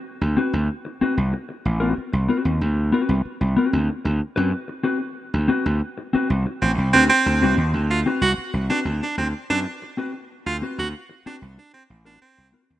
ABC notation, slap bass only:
X:1
M:4/4
L:1/16
Q:1/4=94
K:Dmix
V:1 name="Slap bass" clef=bass
z D,, z D,, z3 C,, z2 A,,,2 z C,, z _E,, | D,,2 z C,, z C,, z D,, z D,, z F,, z4 | z D,, z D,, z3 C,, z A,,, C,, D,, z D,, C,, _E,, | D,,2 z C,, z C,, z D,, z D,, z F,, z4 |
z D,, z D,, z3 C,, z2 A,,,2 z C,, z _E,, |]